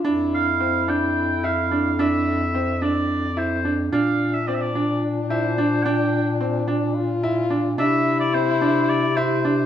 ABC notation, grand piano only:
X:1
M:7/8
L:1/8
Q:1/4=109
K:Bblyd
V:1 name="Grand piano"
D2 C D2 E D | D2 C D2 E D | D2 C D2 E D | D2 C D2 E D |
D2 C D2 E D |]